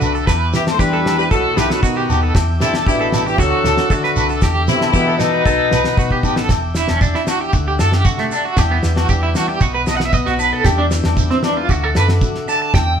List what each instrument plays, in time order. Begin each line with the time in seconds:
Already playing: trombone D3, horn section D4 F#4, steel-string acoustic guitar D4 F#4, clean electric guitar B4, transistor combo organ E5 F#5 D6
0.01 fingered electric bass C2, steel-string acoustic guitar D3, low agogo, shekere
0.15 clean electric guitar A4, shekere
0.27 fingered electric bass E2, steel-string acoustic guitar E2, clean electric guitar B4, transistor combo organ G5, kick, snare, low agogo, shekere
0.53 trombone E3, steel-string acoustic guitar E4, horn section E4 G4, snare, shekere
0.67 snare, low agogo, shekere
0.72 trombone A3, horn section C5
0.78 fingered electric bass E3, trombone G3, steel-string acoustic guitar D4, clean electric guitar G4, horn section G4 B4, kick, shekere
0.93 clean electric guitar A4
1.05 steel-string acoustic guitar G3 E4, snare, low agogo
1.18 trombone G3, horn section G4 B4, clean electric guitar B4, shekere
1.30 fingered electric bass B1, trombone F#3, horn section F#4 A4, clean electric guitar A4, transistor combo organ D#5 F#5 B5, kick, shekere
1.56 fingered electric bass B1, trombone E3, steel-string acoustic guitar D#4, horn section E4 G4, clean electric guitar B4, snare, low agogo, shekere
1.70 trombone F#3, horn section F#4 A4, snare, shekere
1.83 fingered electric bass B2, trombone D#3, steel-string acoustic guitar B3, horn section D#4 F#4, clean electric guitar F#4, kick, shekere
1.97 clean electric guitar G4
2.09 fingered electric bass D#2, steel-string acoustic guitar D#4, muted steel-string acoustic guitar stroke, low agogo, shekere
2.23 clean electric guitar A4
2.34 fingered electric bass E2, transistor combo organ E5 G5 D6, muted clean electric guitar stroke, kick, snare, low agogo, shekere
2.60 trombone C3, horn section C4 E4, steel-string acoustic guitar D4, clean electric guitar A4, snare, shekere
2.74 snare, low agogo, shekere
2.86 fingered electric bass A1, trombone B2, horn section B3 E4, steel-string acoustic guitar D4, clean electric guitar G4, kick, shekere
3.01 clean electric guitar A4
3.12 steel-string acoustic guitar G3 D4, snare, low agogo, shekere
3.26 trombone E3, horn section E4 G4, clean electric guitar G4, shekere
3.38 fingered electric bass D2, steel-string acoustic guitar D3, trombone F#3, clean electric guitar F#4, horn section F#4 A4, transistor combo organ F#5, kick, shekere
3.63 fingered electric bass D2, clean electric guitar A4, snare, low agogo, shekere
3.77 snare, shekere
3.90 trombone D3, fingered electric bass D3, steel-string acoustic guitar D4, horn section D4 F#4, clean electric guitar A4, kick, shekere
4.04 clean electric guitar B4, snare
4.15 fingered electric bass C2, steel-string acoustic guitar D4, low agogo, shekere
4.29 clean electric guitar A4, shekere
4.41 steel-string acoustic guitar E2, fingered electric bass E2, clean electric guitar G4, transistor combo organ E5 G5, kick, snare, low agogo, shekere
4.68 trombone C3, steel-string acoustic guitar B3, horn section C4 E4, snare, shekere
4.81 snare, low agogo
4.92 trombone B2, fingered electric bass E3, horn section B3 E4, steel-string acoustic guitar B3, clean electric guitar G4, kick, shekere
5.08 clean electric guitar A4
5.15 trombone B2, horn section D#4, snare
5.20 steel-string acoustic guitar G3 B4, horn section B3, low agogo, shekere
5.34 clean electric guitar B4
5.45 fingered electric bass B1, steel-string acoustic guitar B2 F#3 B3 D#4 B4, clean electric guitar A4, transistor combo organ D#5 F#5 B5, kick, shekere
5.71 fingered electric bass B1, steel-string acoustic guitar B4, clean electric guitar B4, snare, low agogo, shekere
5.84 snare, shekere
5.97 fingered electric bass B2, steel-string acoustic guitar B3, clean electric guitar F#4, kick, shekere
6.11 clean electric guitar G4, kick
6.22 fingered electric bass A1, steel-string acoustic guitar F#3 D#4, kick, low agogo, shekere
6.36 clean electric guitar A4, snare, shekere
6.49 fingered electric bass E1, transistor combo organ E5 G5 D6, kick, snare, low agogo, shekere
6.75 steel-string acoustic guitar D4, clean electric guitar E4, snare, shekere
6.88 fingered electric bass E1, clean electric guitar C#4, snare, low agogo
7.01 clean electric guitar D4, steel-string acoustic guitar D4, kick, shekere
7.15 clean electric guitar E4, snare
7.27 steel-string acoustic guitar E4, clean electric guitar F#4, muted steel-string acoustic guitar stroke, snare, low agogo, shekere
7.41 clean electric guitar G4
7.53 fingered electric bass D2, steel-string acoustic guitar D3, transistor combo organ F#5, muted clean electric guitar stroke, kick, shekere
7.68 clean electric guitar G4
7.79 fingered electric bass F#2, steel-string acoustic guitar F#4, clean electric guitar A4, snare, low agogo, shekere
7.92 clean electric guitar G4, snare
8.05 steel-string acoustic guitar C3, clean electric guitar F#4, kick, shekere
8.18 clean electric guitar A3, snare
8.31 clean electric guitar D4, low agogo, shekere
8.45 clean electric guitar F#4
8.57 steel-string acoustic guitar E2 G3 D4 E4, fingered electric bass E2, clean electric guitar G4, transistor combo organ G5 D6, kick, snare, low agogo, shekere
8.71 clean electric guitar B3
8.83 fingered electric bass E2, steel-string acoustic guitar B4, snare, shekere
8.96 clean electric guitar F#4, snare, low agogo
9.09 fingered electric bass E2, steel-string acoustic guitar D4, clean electric guitar G4, kick, shekere
9.23 clean electric guitar E4
9.35 fingered electric bass E3, steel-string acoustic guitar G3 E4, clean electric guitar F#4, snare, low agogo, shekere
9.49 clean electric guitar G4
9.60 fingered electric bass B1, steel-string acoustic guitar B2, clean electric guitar F#4, transistor combo organ D#5 F#5 B5, kick, shekere
9.74 clean electric guitar B4
9.87 fingered electric bass B1, steel-string acoustic guitar B4, clean electric guitar D#5, snare, low agogo, shekere
9.97 clean electric guitar F#5, snare
10.05 clean electric guitar E5
10.13 steel-string acoustic guitar B3, clean electric guitar D#5, kick, shekere
10.26 fingered electric bass B1, clean electric guitar F#4, snare
10.38 steel-string acoustic guitar F#3 D#4, clean electric guitar B4, low agogo, shekere
10.53 clean electric guitar A4
10.64 steel-string acoustic guitar E2 G3 D4 E4, fingered electric bass E2, clean electric guitar G4, transistor combo organ E5 G5 D6, kick, snare, low agogo, shekere
10.78 clean electric guitar D4
10.91 steel-string acoustic guitar B4, snare, shekere
11.04 fingered electric bass E2, snare, low agogo
11.17 steel-string acoustic guitar D4, kick, shekere
11.30 clean electric guitar C4, snare
11.42 steel-string acoustic guitar G3 B4, clean electric guitar D4, snare, low agogo
11.57 clean electric guitar F4
11.68 fingered electric bass D2, steel-string acoustic guitar D3, clean electric guitar F#4, transistor combo organ F#5, kick, shekere
11.84 clean electric guitar A4
11.95 fingered electric bass F#2, steel-string acoustic guitar A4, clean electric guitar B4, snare, low agogo, shekere
12.08 snare
12.21 steel-string acoustic guitar F#4, kick, shekere
12.35 snare
12.48 steel-string acoustic guitar D4 A4, clean electric guitar A5, low agogo, shekere
12.62 clean electric guitar A5
12.74 fingered electric bass E2, steel-string acoustic guitar E2, transistor combo organ E5 G5, clean electric guitar G5, kick, snare, low agogo, shekere